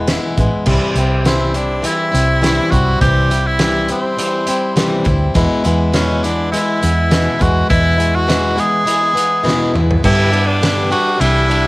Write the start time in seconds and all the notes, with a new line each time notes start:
Already playing: E1
0.07 E3 G#3 B3 E4, snare, closed hi-hat
0.37 A1 E3 G#3 B3 E4, kick, closed hi-hat
0.66 C2 C3 E3 G3 C4 E4, kick, crash
0.95 C2 C4 E4, closed hi-hat
1.00 G3
1.25 C3 E3 G3 C4 E4, snare, closed hi-hat
1.54 G3 C4 D4 E4, closed hi-hat
1.82 E3 G3 C4 E4, closed hi-hat
2.12 C2 G3 C4 E4, closed hi-hat
2.41 C3 E3 G3 C4 E4, snare, closed hi-hat
2.71 C2 G3 C4 E4 F#4, kick, closed hi-hat
3.01 C2 C3 E3 G3 C4 E4 G4, kick, closed hi-hat
3.30 G3 C4 E4, closed hi-hat
3.46 E4
3.59 C3 E3 G3 C4 E4, snare, closed hi-hat
3.88 G3 C4 E4, closed hi-hat
4.17 E3 G3 C4 E4, closed hi-hat
4.47 G3 C4 E4, closed hi-hat
4.76 C3 E3 G3 C4 E4, snare, closed hi-hat
5.04 D2 G3 C4 E4, kick, closed hi-hat
5.34 E2 B2 E3 G#3 B3 E4, kick, closed hi-hat
5.64 E2 E3 G#3 B3 E4, closed hi-hat
5.92 E2 B2 E3 G#3 B3 C#4 E4, snare, closed hi-hat
6.23 E3 G#3 B3 D4 E4, closed hi-hat
6.52 E3 G#3 B3 E4, closed hi-hat
6.81 E2 E3 G#3 B3 E4, closed hi-hat
7.11 E2 B2 E3 G#3 B3 E4, snare, closed hi-hat
7.39 E2 E3 G#3 B3 E4 F#4, kick, closed hi-hat
7.69 E2 B2 E3 G#3 B3 E4, kick, closed hi-hat
7.98 E3 G#3 B3 E4, closed hi-hat
8.15 F#4
8.27 E2 B2 E3 G#3 B3 E4, snare, closed hi-hat
8.56 E3 G#3 B3 E4 G#4, closed hi-hat
8.85 E3 G#3 B3 E4, closed hi-hat
9.14 E3 G#3 B3 E4, closed hi-hat
9.43 E2 B2 E3 G#3 B3 E4, snare
9.74 E2 E3 G#3 B3 E4, mid tom
9.91 floor tom
10.03 G2 D3 G3 B3 D4 E4 G4, kick, crash
10.31 G3 B3 D4 G4, ride
10.47 D4
10.61 G2 D3 G3 B3 D4 G4, snare, ride
10.91 G3 B3 D4 F#4 G4, ride
11.18 C2 E3 G3 D4 E4, ride
11.48 G3 D4 E4, ride